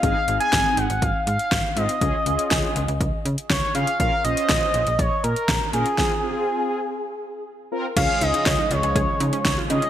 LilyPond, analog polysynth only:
\new Staff \with { instrumentName = "Analog polysynth" } { \time 4/4 \key des \major \tempo 4 = 121 <c' ees' aes'>8 <c' ees' aes'>4 r2 <c' ees' f'>8 | <des' f' aes'>8 <des' f' aes'>4 r2 <des' f' aes'>8 | <des' f' bes'>8 <des' f' c''>4 r2 <des' f' bes'>8 | <c' f' aes'>8 <c' f' aes'>4 r2 <c' f' bes'>8 |
<des' f' aes'>4 r2 r8 <des' f' aes'>8 | }